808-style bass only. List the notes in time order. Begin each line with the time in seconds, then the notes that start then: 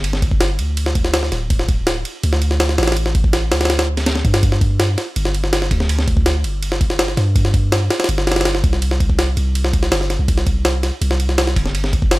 Already playing: G1
0.59 D2
1.32 D1
2.24 D2
2.78 A1
3.51 D2
4.25 G2
5.16 G1
5.71 D2
6.44 G1
7.17 G2
8.09 G1
8.64 C2
9.37 C2
9.92 G1
10.19 C2
11.01 C2
11.56 G1